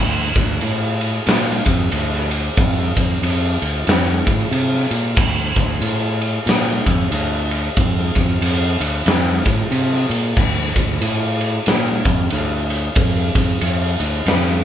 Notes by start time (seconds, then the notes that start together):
Already playing: D2
0.35 D2, kick, ride
0.61 A2, ride
1.01 ride
1.27 A#2, snare, ride
1.66 F2, kick, ride
1.92 D2, ride
2.14 snare
2.31 ride
2.57 F2, kick, ride
2.96 F2, kick, ride
3.22 F2, ride
3.62 D2, ride
3.87 F2, snare, ride
4.27 A2, kick, ride
4.51 C3, ride
4.74 snare
4.90 A#2, ride
5.16 D2, kick, crash
5.56 D2, kick, ride
5.81 A2, ride
6.21 ride
6.46 A#2, snare, ride
6.86 F2, kick, ride
7.11 D2, ride
7.51 ride
7.77 F2, kick, ride
8.15 F2, kick, ride
8.41 F2, ride
8.80 D2, ride
9.06 F2, snare, ride
9.45 A2, kick, ride
9.71 C3, ride
9.93 snare
10.09 A#2, ride
10.37 D2, kick, crash
10.76 D2, kick, ride
11.01 A2, ride
11.41 ride
11.66 A#2, snare, ride
12.05 F2, kick, ride
12.30 D2, ride
12.70 ride
12.95 F2, kick, ride
13.35 F2, kick, ride
13.61 F2, ride
14.00 D2, ride
14.26 F2, snare, ride